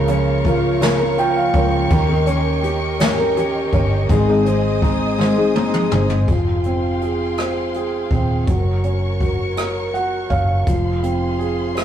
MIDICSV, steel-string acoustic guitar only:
0, 0, Header, 1, 2, 480
1, 0, Start_track
1, 0, Tempo, 729927
1, 1251, Time_signature, 6, 3, 24, 8
1, 7790, End_track
2, 0, Start_track
2, 0, Title_t, "Steel-string acoustic guitar"
2, 0, Program_c, 0, 25
2, 50, Note_on_c, 0, 53, 66
2, 55, Note_on_c, 0, 58, 69
2, 59, Note_on_c, 0, 65, 67
2, 63, Note_on_c, 0, 70, 76
2, 283, Note_off_c, 0, 53, 0
2, 286, Note_off_c, 0, 58, 0
2, 291, Note_on_c, 0, 53, 57
2, 292, Note_off_c, 0, 65, 0
2, 294, Note_on_c, 0, 58, 60
2, 295, Note_off_c, 0, 70, 0
2, 300, Note_on_c, 0, 65, 66
2, 303, Note_on_c, 0, 70, 71
2, 525, Note_off_c, 0, 53, 0
2, 525, Note_off_c, 0, 58, 0
2, 528, Note_off_c, 0, 65, 0
2, 530, Note_off_c, 0, 70, 0
2, 530, Note_on_c, 0, 49, 85
2, 533, Note_on_c, 0, 53, 85
2, 533, Note_on_c, 0, 58, 89
2, 536, Note_on_c, 0, 65, 90
2, 538, Note_on_c, 0, 70, 98
2, 644, Note_off_c, 0, 70, 0
2, 651, Note_off_c, 0, 49, 0
2, 652, Note_off_c, 0, 65, 0
2, 652, Note_on_c, 0, 70, 58
2, 653, Note_off_c, 0, 53, 0
2, 653, Note_off_c, 0, 58, 0
2, 659, Note_on_c, 0, 65, 52
2, 665, Note_on_c, 0, 58, 49
2, 768, Note_off_c, 0, 58, 0
2, 771, Note_on_c, 0, 53, 70
2, 772, Note_off_c, 0, 70, 0
2, 773, Note_off_c, 0, 65, 0
2, 776, Note_on_c, 0, 58, 68
2, 781, Note_on_c, 0, 65, 79
2, 782, Note_on_c, 0, 70, 70
2, 1003, Note_off_c, 0, 53, 0
2, 1008, Note_off_c, 0, 58, 0
2, 1010, Note_on_c, 0, 53, 65
2, 1012, Note_off_c, 0, 65, 0
2, 1015, Note_off_c, 0, 70, 0
2, 1016, Note_on_c, 0, 58, 66
2, 1020, Note_on_c, 0, 65, 62
2, 1023, Note_on_c, 0, 70, 67
2, 1248, Note_off_c, 0, 58, 0
2, 1251, Note_off_c, 0, 53, 0
2, 1252, Note_on_c, 0, 51, 89
2, 1253, Note_off_c, 0, 70, 0
2, 1256, Note_off_c, 0, 65, 0
2, 1256, Note_on_c, 0, 58, 97
2, 1257, Note_on_c, 0, 61, 94
2, 1260, Note_on_c, 0, 67, 98
2, 1260, Note_on_c, 0, 70, 101
2, 1365, Note_off_c, 0, 70, 0
2, 1370, Note_off_c, 0, 67, 0
2, 1372, Note_off_c, 0, 51, 0
2, 1373, Note_off_c, 0, 58, 0
2, 1373, Note_on_c, 0, 70, 54
2, 1374, Note_off_c, 0, 61, 0
2, 1378, Note_on_c, 0, 67, 57
2, 1386, Note_on_c, 0, 61, 47
2, 1487, Note_off_c, 0, 61, 0
2, 1492, Note_off_c, 0, 70, 0
2, 1492, Note_on_c, 0, 58, 67
2, 1493, Note_off_c, 0, 67, 0
2, 1495, Note_on_c, 0, 61, 77
2, 1501, Note_on_c, 0, 67, 68
2, 1504, Note_on_c, 0, 70, 72
2, 1721, Note_off_c, 0, 58, 0
2, 1726, Note_off_c, 0, 61, 0
2, 1729, Note_on_c, 0, 58, 53
2, 1731, Note_off_c, 0, 67, 0
2, 1734, Note_off_c, 0, 70, 0
2, 1734, Note_on_c, 0, 61, 57
2, 1739, Note_on_c, 0, 67, 70
2, 1742, Note_on_c, 0, 70, 68
2, 1967, Note_off_c, 0, 58, 0
2, 1970, Note_off_c, 0, 61, 0
2, 1971, Note_off_c, 0, 67, 0
2, 1974, Note_off_c, 0, 70, 0
2, 1974, Note_on_c, 0, 51, 89
2, 1975, Note_on_c, 0, 58, 91
2, 1978, Note_on_c, 0, 61, 96
2, 1979, Note_on_c, 0, 67, 103
2, 1981, Note_on_c, 0, 70, 92
2, 2085, Note_off_c, 0, 70, 0
2, 2092, Note_off_c, 0, 51, 0
2, 2092, Note_off_c, 0, 67, 0
2, 2093, Note_off_c, 0, 58, 0
2, 2093, Note_on_c, 0, 70, 60
2, 2094, Note_off_c, 0, 61, 0
2, 2100, Note_on_c, 0, 67, 49
2, 2106, Note_on_c, 0, 61, 48
2, 2208, Note_off_c, 0, 61, 0
2, 2212, Note_off_c, 0, 70, 0
2, 2213, Note_off_c, 0, 67, 0
2, 2213, Note_on_c, 0, 58, 68
2, 2216, Note_on_c, 0, 61, 79
2, 2221, Note_on_c, 0, 67, 69
2, 2225, Note_on_c, 0, 70, 76
2, 2441, Note_off_c, 0, 58, 0
2, 2446, Note_off_c, 0, 61, 0
2, 2449, Note_on_c, 0, 58, 63
2, 2452, Note_off_c, 0, 67, 0
2, 2454, Note_off_c, 0, 70, 0
2, 2454, Note_on_c, 0, 61, 72
2, 2459, Note_on_c, 0, 67, 73
2, 2462, Note_on_c, 0, 70, 67
2, 2689, Note_on_c, 0, 44, 90
2, 2690, Note_off_c, 0, 58, 0
2, 2692, Note_off_c, 0, 61, 0
2, 2693, Note_on_c, 0, 51, 81
2, 2693, Note_on_c, 0, 56, 97
2, 2694, Note_off_c, 0, 67, 0
2, 2696, Note_off_c, 0, 70, 0
2, 2697, Note_on_c, 0, 60, 92
2, 2697, Note_on_c, 0, 63, 90
2, 2698, Note_on_c, 0, 68, 97
2, 2803, Note_off_c, 0, 68, 0
2, 2807, Note_off_c, 0, 63, 0
2, 2810, Note_off_c, 0, 44, 0
2, 2811, Note_on_c, 0, 68, 59
2, 2812, Note_off_c, 0, 51, 0
2, 2812, Note_off_c, 0, 56, 0
2, 2812, Note_off_c, 0, 60, 0
2, 2814, Note_on_c, 0, 63, 52
2, 2820, Note_on_c, 0, 60, 49
2, 2824, Note_on_c, 0, 56, 51
2, 2920, Note_off_c, 0, 56, 0
2, 2925, Note_off_c, 0, 60, 0
2, 2928, Note_on_c, 0, 56, 67
2, 2929, Note_off_c, 0, 63, 0
2, 2931, Note_off_c, 0, 68, 0
2, 2933, Note_on_c, 0, 60, 64
2, 2937, Note_on_c, 0, 63, 75
2, 2941, Note_on_c, 0, 68, 68
2, 3156, Note_off_c, 0, 56, 0
2, 3160, Note_off_c, 0, 60, 0
2, 3164, Note_on_c, 0, 56, 57
2, 3166, Note_off_c, 0, 63, 0
2, 3168, Note_on_c, 0, 60, 68
2, 3169, Note_off_c, 0, 68, 0
2, 3174, Note_on_c, 0, 63, 73
2, 3177, Note_on_c, 0, 68, 69
2, 3400, Note_off_c, 0, 56, 0
2, 3402, Note_off_c, 0, 60, 0
2, 3405, Note_off_c, 0, 63, 0
2, 3405, Note_on_c, 0, 44, 81
2, 3406, Note_off_c, 0, 68, 0
2, 3407, Note_on_c, 0, 56, 89
2, 3408, Note_on_c, 0, 51, 86
2, 3410, Note_on_c, 0, 60, 90
2, 3413, Note_on_c, 0, 63, 85
2, 3414, Note_on_c, 0, 68, 93
2, 3519, Note_off_c, 0, 68, 0
2, 3522, Note_off_c, 0, 63, 0
2, 3526, Note_off_c, 0, 60, 0
2, 3527, Note_on_c, 0, 68, 62
2, 3528, Note_off_c, 0, 44, 0
2, 3529, Note_off_c, 0, 51, 0
2, 3529, Note_off_c, 0, 56, 0
2, 3530, Note_on_c, 0, 63, 56
2, 3534, Note_on_c, 0, 60, 51
2, 3539, Note_on_c, 0, 56, 49
2, 3638, Note_off_c, 0, 56, 0
2, 3645, Note_off_c, 0, 60, 0
2, 3646, Note_on_c, 0, 56, 66
2, 3648, Note_off_c, 0, 63, 0
2, 3649, Note_off_c, 0, 68, 0
2, 3653, Note_on_c, 0, 60, 64
2, 3656, Note_on_c, 0, 63, 76
2, 3659, Note_on_c, 0, 68, 74
2, 3880, Note_off_c, 0, 56, 0
2, 3883, Note_off_c, 0, 60, 0
2, 3888, Note_off_c, 0, 63, 0
2, 3888, Note_on_c, 0, 56, 65
2, 3891, Note_on_c, 0, 60, 64
2, 3892, Note_off_c, 0, 68, 0
2, 3896, Note_on_c, 0, 63, 75
2, 3899, Note_on_c, 0, 68, 61
2, 4130, Note_off_c, 0, 56, 0
2, 4131, Note_off_c, 0, 60, 0
2, 4134, Note_off_c, 0, 63, 0
2, 4135, Note_off_c, 0, 68, 0
2, 7790, End_track
0, 0, End_of_file